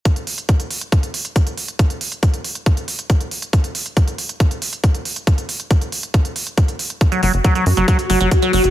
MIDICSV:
0, 0, Header, 1, 5, 480
1, 0, Start_track
1, 0, Tempo, 434783
1, 60, Time_signature, 4, 2, 24, 8
1, 9607, End_track
2, 0, Start_track
2, 0, Title_t, "Synth drone"
2, 0, Program_c, 0, 95
2, 7739, Note_on_c, 0, 66, 88
2, 9607, Note_off_c, 0, 66, 0
2, 9607, End_track
3, 0, Start_track
3, 0, Title_t, "Acid bass"
3, 0, Program_c, 1, 38
3, 7859, Note_on_c, 1, 54, 75
3, 7966, Note_off_c, 1, 54, 0
3, 7979, Note_on_c, 1, 54, 78
3, 8086, Note_off_c, 1, 54, 0
3, 8219, Note_on_c, 1, 54, 86
3, 8326, Note_off_c, 1, 54, 0
3, 8339, Note_on_c, 1, 54, 75
3, 8446, Note_off_c, 1, 54, 0
3, 8579, Note_on_c, 1, 54, 79
3, 8686, Note_off_c, 1, 54, 0
3, 8699, Note_on_c, 1, 54, 84
3, 8806, Note_off_c, 1, 54, 0
3, 8939, Note_on_c, 1, 54, 76
3, 9046, Note_off_c, 1, 54, 0
3, 9059, Note_on_c, 1, 54, 75
3, 9166, Note_off_c, 1, 54, 0
3, 9299, Note_on_c, 1, 54, 78
3, 9406, Note_off_c, 1, 54, 0
3, 9419, Note_on_c, 1, 54, 79
3, 9526, Note_off_c, 1, 54, 0
3, 9607, End_track
4, 0, Start_track
4, 0, Title_t, "Analog synth bass"
4, 0, Program_c, 2, 38
4, 7979, Note_on_c, 2, 30, 96
4, 8059, Note_off_c, 2, 30, 0
4, 8099, Note_on_c, 2, 30, 82
4, 8179, Note_off_c, 2, 30, 0
4, 8459, Note_on_c, 2, 42, 94
4, 8539, Note_off_c, 2, 42, 0
4, 8579, Note_on_c, 2, 30, 80
4, 8659, Note_off_c, 2, 30, 0
4, 8939, Note_on_c, 2, 30, 91
4, 9019, Note_off_c, 2, 30, 0
4, 9059, Note_on_c, 2, 30, 81
4, 9139, Note_off_c, 2, 30, 0
4, 9419, Note_on_c, 2, 30, 92
4, 9499, Note_off_c, 2, 30, 0
4, 9539, Note_on_c, 2, 30, 81
4, 9607, Note_off_c, 2, 30, 0
4, 9607, End_track
5, 0, Start_track
5, 0, Title_t, "Drums"
5, 59, Note_on_c, 9, 36, 114
5, 59, Note_on_c, 9, 42, 68
5, 169, Note_off_c, 9, 36, 0
5, 169, Note_off_c, 9, 42, 0
5, 179, Note_on_c, 9, 42, 39
5, 289, Note_off_c, 9, 42, 0
5, 299, Note_on_c, 9, 46, 100
5, 409, Note_off_c, 9, 46, 0
5, 419, Note_on_c, 9, 42, 39
5, 529, Note_off_c, 9, 42, 0
5, 539, Note_on_c, 9, 36, 113
5, 539, Note_on_c, 9, 42, 69
5, 649, Note_off_c, 9, 36, 0
5, 649, Note_off_c, 9, 42, 0
5, 659, Note_on_c, 9, 42, 40
5, 769, Note_off_c, 9, 42, 0
5, 779, Note_on_c, 9, 46, 91
5, 889, Note_off_c, 9, 46, 0
5, 899, Note_on_c, 9, 42, 41
5, 1009, Note_off_c, 9, 42, 0
5, 1019, Note_on_c, 9, 36, 116
5, 1019, Note_on_c, 9, 42, 65
5, 1129, Note_off_c, 9, 36, 0
5, 1129, Note_off_c, 9, 42, 0
5, 1139, Note_on_c, 9, 42, 41
5, 1249, Note_off_c, 9, 42, 0
5, 1259, Note_on_c, 9, 46, 105
5, 1369, Note_off_c, 9, 46, 0
5, 1379, Note_on_c, 9, 42, 39
5, 1489, Note_off_c, 9, 42, 0
5, 1499, Note_on_c, 9, 36, 113
5, 1499, Note_on_c, 9, 42, 65
5, 1609, Note_off_c, 9, 36, 0
5, 1609, Note_off_c, 9, 42, 0
5, 1619, Note_on_c, 9, 42, 38
5, 1729, Note_off_c, 9, 42, 0
5, 1739, Note_on_c, 9, 46, 86
5, 1849, Note_off_c, 9, 46, 0
5, 1859, Note_on_c, 9, 42, 40
5, 1969, Note_off_c, 9, 42, 0
5, 1979, Note_on_c, 9, 36, 118
5, 1979, Note_on_c, 9, 42, 62
5, 2089, Note_off_c, 9, 36, 0
5, 2089, Note_off_c, 9, 42, 0
5, 2099, Note_on_c, 9, 42, 38
5, 2209, Note_off_c, 9, 42, 0
5, 2219, Note_on_c, 9, 46, 102
5, 2329, Note_off_c, 9, 46, 0
5, 2339, Note_on_c, 9, 42, 38
5, 2449, Note_off_c, 9, 42, 0
5, 2459, Note_on_c, 9, 36, 122
5, 2459, Note_on_c, 9, 42, 64
5, 2569, Note_off_c, 9, 36, 0
5, 2569, Note_off_c, 9, 42, 0
5, 2579, Note_on_c, 9, 42, 38
5, 2689, Note_off_c, 9, 42, 0
5, 2699, Note_on_c, 9, 46, 95
5, 2809, Note_off_c, 9, 46, 0
5, 2819, Note_on_c, 9, 42, 38
5, 2929, Note_off_c, 9, 42, 0
5, 2939, Note_on_c, 9, 36, 123
5, 2939, Note_on_c, 9, 42, 63
5, 3049, Note_off_c, 9, 36, 0
5, 3049, Note_off_c, 9, 42, 0
5, 3059, Note_on_c, 9, 42, 39
5, 3169, Note_off_c, 9, 42, 0
5, 3179, Note_on_c, 9, 46, 107
5, 3289, Note_off_c, 9, 46, 0
5, 3299, Note_on_c, 9, 42, 40
5, 3409, Note_off_c, 9, 42, 0
5, 3419, Note_on_c, 9, 36, 117
5, 3419, Note_on_c, 9, 42, 64
5, 3529, Note_off_c, 9, 36, 0
5, 3529, Note_off_c, 9, 42, 0
5, 3539, Note_on_c, 9, 42, 39
5, 3649, Note_off_c, 9, 42, 0
5, 3659, Note_on_c, 9, 46, 90
5, 3769, Note_off_c, 9, 46, 0
5, 3779, Note_on_c, 9, 42, 41
5, 3889, Note_off_c, 9, 42, 0
5, 3899, Note_on_c, 9, 36, 121
5, 3899, Note_on_c, 9, 42, 61
5, 4009, Note_off_c, 9, 42, 0
5, 4010, Note_off_c, 9, 36, 0
5, 4019, Note_on_c, 9, 42, 37
5, 4130, Note_off_c, 9, 42, 0
5, 4139, Note_on_c, 9, 46, 102
5, 4249, Note_off_c, 9, 46, 0
5, 4259, Note_on_c, 9, 42, 36
5, 4370, Note_off_c, 9, 42, 0
5, 4379, Note_on_c, 9, 36, 122
5, 4379, Note_on_c, 9, 42, 63
5, 4490, Note_off_c, 9, 36, 0
5, 4490, Note_off_c, 9, 42, 0
5, 4499, Note_on_c, 9, 42, 37
5, 4610, Note_off_c, 9, 42, 0
5, 4619, Note_on_c, 9, 46, 97
5, 4730, Note_off_c, 9, 46, 0
5, 4739, Note_on_c, 9, 42, 38
5, 4850, Note_off_c, 9, 42, 0
5, 4859, Note_on_c, 9, 36, 117
5, 4859, Note_on_c, 9, 42, 63
5, 4970, Note_off_c, 9, 36, 0
5, 4970, Note_off_c, 9, 42, 0
5, 4979, Note_on_c, 9, 42, 39
5, 5090, Note_off_c, 9, 42, 0
5, 5099, Note_on_c, 9, 46, 110
5, 5210, Note_off_c, 9, 46, 0
5, 5219, Note_on_c, 9, 42, 39
5, 5330, Note_off_c, 9, 42, 0
5, 5339, Note_on_c, 9, 36, 121
5, 5339, Note_on_c, 9, 42, 60
5, 5450, Note_off_c, 9, 36, 0
5, 5450, Note_off_c, 9, 42, 0
5, 5459, Note_on_c, 9, 42, 37
5, 5570, Note_off_c, 9, 42, 0
5, 5579, Note_on_c, 9, 46, 92
5, 5690, Note_off_c, 9, 46, 0
5, 5700, Note_on_c, 9, 42, 38
5, 5810, Note_off_c, 9, 42, 0
5, 5819, Note_on_c, 9, 36, 124
5, 5819, Note_on_c, 9, 42, 60
5, 5930, Note_off_c, 9, 36, 0
5, 5930, Note_off_c, 9, 42, 0
5, 5940, Note_on_c, 9, 42, 36
5, 6050, Note_off_c, 9, 42, 0
5, 6059, Note_on_c, 9, 46, 100
5, 6170, Note_off_c, 9, 46, 0
5, 6179, Note_on_c, 9, 42, 37
5, 6290, Note_off_c, 9, 42, 0
5, 6299, Note_on_c, 9, 36, 122
5, 6299, Note_on_c, 9, 42, 60
5, 6410, Note_off_c, 9, 36, 0
5, 6410, Note_off_c, 9, 42, 0
5, 6419, Note_on_c, 9, 42, 36
5, 6530, Note_off_c, 9, 42, 0
5, 6539, Note_on_c, 9, 46, 96
5, 6650, Note_off_c, 9, 46, 0
5, 6659, Note_on_c, 9, 42, 37
5, 6770, Note_off_c, 9, 42, 0
5, 6779, Note_on_c, 9, 36, 118
5, 6779, Note_on_c, 9, 42, 60
5, 6890, Note_off_c, 9, 36, 0
5, 6890, Note_off_c, 9, 42, 0
5, 6899, Note_on_c, 9, 42, 38
5, 7010, Note_off_c, 9, 42, 0
5, 7019, Note_on_c, 9, 46, 104
5, 7130, Note_off_c, 9, 46, 0
5, 7139, Note_on_c, 9, 42, 38
5, 7250, Note_off_c, 9, 42, 0
5, 7259, Note_on_c, 9, 36, 121
5, 7259, Note_on_c, 9, 42, 59
5, 7370, Note_off_c, 9, 36, 0
5, 7370, Note_off_c, 9, 42, 0
5, 7379, Note_on_c, 9, 42, 36
5, 7490, Note_off_c, 9, 42, 0
5, 7499, Note_on_c, 9, 46, 92
5, 7610, Note_off_c, 9, 46, 0
5, 7619, Note_on_c, 9, 42, 38
5, 7730, Note_off_c, 9, 42, 0
5, 7739, Note_on_c, 9, 36, 120
5, 7739, Note_on_c, 9, 42, 61
5, 7850, Note_off_c, 9, 36, 0
5, 7850, Note_off_c, 9, 42, 0
5, 7859, Note_on_c, 9, 42, 36
5, 7970, Note_off_c, 9, 42, 0
5, 7979, Note_on_c, 9, 46, 101
5, 8089, Note_off_c, 9, 46, 0
5, 8099, Note_on_c, 9, 42, 36
5, 8210, Note_off_c, 9, 42, 0
5, 8219, Note_on_c, 9, 36, 121
5, 8219, Note_on_c, 9, 42, 63
5, 8330, Note_off_c, 9, 36, 0
5, 8330, Note_off_c, 9, 42, 0
5, 8339, Note_on_c, 9, 42, 36
5, 8450, Note_off_c, 9, 42, 0
5, 8459, Note_on_c, 9, 46, 92
5, 8570, Note_off_c, 9, 46, 0
5, 8579, Note_on_c, 9, 42, 38
5, 8690, Note_off_c, 9, 42, 0
5, 8699, Note_on_c, 9, 36, 112
5, 8699, Note_on_c, 9, 42, 62
5, 8810, Note_off_c, 9, 36, 0
5, 8810, Note_off_c, 9, 42, 0
5, 8819, Note_on_c, 9, 42, 39
5, 8930, Note_off_c, 9, 42, 0
5, 8939, Note_on_c, 9, 46, 103
5, 9050, Note_off_c, 9, 46, 0
5, 9059, Note_on_c, 9, 42, 38
5, 9170, Note_off_c, 9, 42, 0
5, 9179, Note_on_c, 9, 36, 115
5, 9179, Note_on_c, 9, 42, 60
5, 9289, Note_off_c, 9, 36, 0
5, 9290, Note_off_c, 9, 42, 0
5, 9299, Note_on_c, 9, 42, 38
5, 9409, Note_off_c, 9, 42, 0
5, 9419, Note_on_c, 9, 46, 88
5, 9530, Note_off_c, 9, 46, 0
5, 9539, Note_on_c, 9, 42, 38
5, 9607, Note_off_c, 9, 42, 0
5, 9607, End_track
0, 0, End_of_file